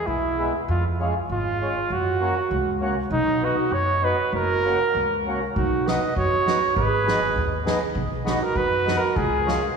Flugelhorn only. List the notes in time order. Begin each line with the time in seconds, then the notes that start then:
0.07 E4
0.70 F4
1.02 G#4
1.32 F4
1.92 F#4
3.13 D#4
3.44 F#4
3.73 C#5
4.04 B4
4.35 A#4
5.56 F#4
5.88 D#5
6.17 C#5
6.77 B4
8.28 F#4
8.43 A#4
8.57 B4
8.97 A#4
9.16 G#4